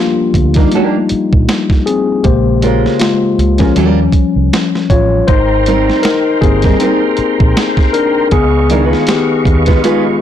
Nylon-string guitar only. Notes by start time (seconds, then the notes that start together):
0.57 A#3 D4 G4 A#4
0.74 A#3 D4 G4 A#4
2.62 G#3 C#4 F4 A#4
3.60 G#3 C#4 F4 A#4
3.76 G3 C#4 F4 A#4
5.67 G3 C4 D#4 A#4
6.64 G3 C4 D#4 A#4
6.81 G3 C4 D#4 A#4
8.70 G3 D4 E4 A#4
8.84 G#3 D#4 F4 B4
9.67 G#3 D#4 F4 B4
9.84 G#3 D#4 F4 B4